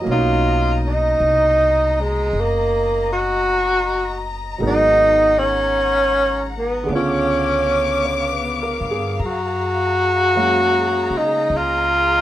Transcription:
0.00 4.57 F#3 soft
0.00 4.59 A#3 soft
0.00 4.56 D#5 medium
0.07 1.16 B1 medium
0.07 4.60 B2 soft
0.07 4.62 C#4 soft
0.07 6.85 A#5 medium
0.11 4.61 D#4 medium
0.11 0.79 F4 medium
0.87 2.02 D#4 medium
1.20 2.30 C2 medium
2.00 2.42 G#3 medium
2.33 4.56 F#1 medium
2.40 3.11 A#3 medium
3.12 4.19 F#4 loud
4.58 6.85 G#1 medium
4.58 6.88 F#3 soft
4.58 6.88 G#3 soft
4.58 6.89 B3 soft
4.58 6.90 A#4 soft
4.63 6.90 D#4 medium
4.63 5.40 D#4 loud
4.63 6.88 F#5 medium
5.39 6.51 C#4 loud
6.57 6.90 B3 medium
6.84 9.17 D3 medium
6.84 8.89 G#4 soft
6.89 8.76 C#2 medium
6.89 9.20 B3 soft
6.89 9.18 B3 medium
6.89 9.21 C#4 soft
6.89 11.46 F5 medium
6.89 9.18 D6 medium
6.95 8.79 C#4 medium
6.95 9.23 F4 medium
8.05 8.57 C#5 soft
8.33 8.81 B4 soft
8.62 8.98 A#4 soft
8.81 9.17 G2 medium
8.91 9.31 G#4 soft
9.19 11.06 F#2 medium
9.19 12.21 G#4 medium
9.19 12.21 A#5 medium
9.25 11.19 F#4 loud
10.35 12.21 F#3 soft
10.35 12.21 G#3 soft
10.35 12.21 A#3 soft
10.35 12.21 C#4 soft
10.35 12.21 F5 soft
11.10 11.47 C#3 medium
11.17 11.59 D#4 medium
11.50 12.21 C#2 medium
11.50 12.21 D#5 medium
11.57 12.21 F4 loud

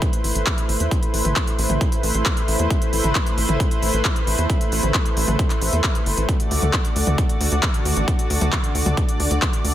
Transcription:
0.00 9.74 A3 medium
0.00 6.25 E4 medium
0.00 6.25 B4 medium
0.00 6.25 C5 medium
0.00 kick loud
0.00 closed hi-hat medium
0.13 closed hi-hat medium
0.24 0.33 A1 medium
0.24 open hi-hat loud
0.35 0.44 A1 medium
0.35 closed hi-hat medium
0.47 kick loud
0.47 clap loud
0.47 closed hi-hat medium
0.58 closed hi-hat medium
0.69 0.78 A1 medium
0.69 open hi-hat loud
0.80 0.89 E2 medium
0.80 closed hi-hat medium
0.91 kick loud
0.91 closed hi-hat medium
1.03 closed hi-hat medium
1.14 1.22 A1 medium
1.14 open hi-hat loud
1.25 1.34 A1 medium
1.25 closed hi-hat medium
1.25 mid tom medium
1.36 kick loud
1.36 clap loud
1.36 closed hi-hat medium
1.47 closed hi-hat medium
1.59 1.67 A1 medium
1.59 open hi-hat loud
1.70 1.78 A1 medium
1.70 closed hi-hat medium
1.70 mid tom medium
1.81 kick loud
1.81 closed hi-hat medium
1.92 closed hi-hat medium
2.03 2.12 A1 medium
2.03 open hi-hat loud
2.15 2.23 A1 medium
2.15 closed hi-hat medium
2.26 kick loud
2.26 clap loud
2.26 closed hi-hat medium
2.37 closed hi-hat medium
2.48 2.57 A1 medium
2.48 open hi-hat loud
2.59 2.68 E2 medium
2.59 closed hi-hat medium
2.70 kick loud
2.70 closed hi-hat medium
2.82 closed hi-hat medium
2.93 3.01 A1 medium
2.93 open hi-hat loud
3.04 3.13 A1 medium
3.04 closed hi-hat medium
3.04 mid tom medium
3.15 kick loud
3.15 clap loud
3.15 closed hi-hat medium
3.26 closed hi-hat medium
3.38 3.46 A1 medium
3.38 open hi-hat loud
3.49 3.57 A1 medium
3.49 closed hi-hat medium
3.49 mid tom medium
3.60 kick loud
3.60 closed hi-hat medium
3.71 closed hi-hat medium
3.82 3.91 A1 medium
3.82 open hi-hat loud
3.94 4.02 A1 medium
3.94 closed hi-hat medium
4.05 kick loud
4.05 clap loud
4.05 closed hi-hat medium
4.16 closed hi-hat medium
4.27 4.36 A1 medium
4.27 open hi-hat loud
4.38 4.47 E2 medium
4.38 closed hi-hat medium
4.50 kick loud
4.50 closed hi-hat medium
4.61 closed hi-hat medium
4.72 4.81 A1 medium
4.72 open hi-hat loud
4.83 4.92 A1 medium
4.83 closed hi-hat medium
4.83 mid tom medium
4.94 kick loud
4.94 clap loud
4.94 closed hi-hat medium
5.06 closed hi-hat medium
5.17 5.25 A1 loud
5.17 open hi-hat loud
5.28 5.37 A1 medium
5.28 closed hi-hat medium
5.28 mid tom medium
5.39 kick loud
5.39 closed hi-hat medium
5.50 clap soft
5.50 closed hi-hat medium
5.61 5.70 A1 medium
5.61 open hi-hat loud
5.73 5.81 E2 medium
5.73 closed hi-hat medium
5.84 kick loud
5.84 clap loud
5.84 closed hi-hat medium
5.95 closed hi-hat medium
6.06 6.15 G1 medium
6.06 open hi-hat loud
6.17 6.26 A1 medium
6.17 closed hi-hat medium
6.29 9.74 D3 medium
6.29 9.74 F#4 medium
6.29 9.74 D5 medium
6.29 kick loud
6.29 closed hi-hat medium
6.40 closed hi-hat medium
6.51 6.60 D2 medium
6.51 open hi-hat loud
6.62 6.71 D2 medium
6.62 closed hi-hat medium
6.62 mid tom medium
6.73 kick loud
6.73 clap loud
6.73 closed hi-hat medium
6.85 closed hi-hat medium
6.96 7.04 D2 medium
6.96 open hi-hat loud
7.07 7.16 D2 medium
7.07 closed hi-hat medium
7.07 mid tom medium
7.18 kick loud
7.18 closed hi-hat medium
7.29 closed hi-hat medium
7.41 7.49 D2 loud
7.41 open hi-hat loud
7.52 7.60 D2 medium
7.52 closed hi-hat medium
7.63 kick loud
7.63 clap loud
7.63 closed hi-hat medium
7.74 closed hi-hat medium
7.85 7.94 D2 medium
7.85 open hi-hat loud
7.97 8.05 A1 medium
7.97 closed hi-hat medium
8.08 kick loud
8.08 closed hi-hat medium
8.19 closed hi-hat medium
8.30 8.39 D2 medium
8.30 open hi-hat loud
8.41 8.50 D2 medium
8.41 closed hi-hat medium
8.41 mid tom medium
8.53 kick loud
8.53 clap loud
8.53 closed hi-hat medium
8.64 closed hi-hat medium
8.75 8.83 D2 medium
8.75 open hi-hat loud
8.86 8.95 D2 medium
8.86 closed hi-hat medium
8.86 mid tom medium
8.97 kick loud
8.97 closed hi-hat medium
9.09 closed hi-hat medium
9.20 9.28 D2 medium
9.20 open hi-hat loud
9.31 9.39 D2 medium
9.31 closed hi-hat medium
9.42 kick loud
9.42 clap loud
9.42 closed hi-hat medium
9.53 closed hi-hat medium
9.64 9.73 D2 medium
9.64 open hi-hat loud

